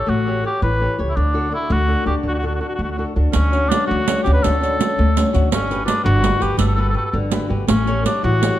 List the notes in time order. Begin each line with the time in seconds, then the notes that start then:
Already playing: G4 A4 C#5
0.07 A1 A3 F#4
0.27 G4 A4 C#5
0.44 G4 A4 C#5
0.62 A1 E3 B4
0.81 G4 A4 C#5
0.98 C#2 G4 A4 C#5
1.10 E4
1.16 D2 D3 D4
1.34 D4 F#4 A4
1.51 D4 E4 F#4 A4
1.70 D2 A3 F#4
1.88 D4 F#4 A4
2.05 D2 D4 F#4 G4 A4
2.23 D2 D3
2.28 F#4
2.35 F#4
2.39 D4 F#4
2.44 F#4 A4
2.55 F#4
2.60 D4 F#4 A4
2.69 F#4
2.75 D2 A3 F#4
2.83 F#4
2.92 F#4
2.97 D4 F#4 A4
3.16 D2 D4 F#4 A4
3.32 D2 D3 C#4, riq
3.52 C#4 D4 F#4, riq
3.69 C#4 D4 F#4, riq
3.87 D2 A3 F#4
4.07 C#4 D4 F#4, riq
4.24 D2 C#4 D4 F#4 G4, riq
4.34 B4
4.43 D2 D3 A4, riq
4.61 C#4 D4 F#4, riq
4.78 C#4 D4 F#4, riq
4.98 D2 A3
5.17 C#4 D4 F#4, riq
5.33 D2 C#4 D4 F#4, riq
5.51 G1 G3 C#4, riq
5.70 F#4 G4 B4, riq
5.85 D4 F#4 G4 B4, riq
6.04 G1 D3 F#4
6.21 F#4 G4 B4, riq
6.39 G1 F#4 G4 B4, riq
6.57 G1 G3 A4, riq
6.68 A4
6.75 F#4 G4 A4 B4
6.82 A4
6.89 A4
6.94 F#4 G4 A4 B4
7.05 A4
7.11 G1 D3 A4
7.31 F#4 G4 B4, riq
7.48 G1 F#4 G4 B4
7.67 A1 A3 C#4, riq
7.86 G4 A4 C#5, riq
8.04 D4 G4 A4 C#5, riq
8.23 A1 E3 F#4
8.41 G4 A4 C#5, riq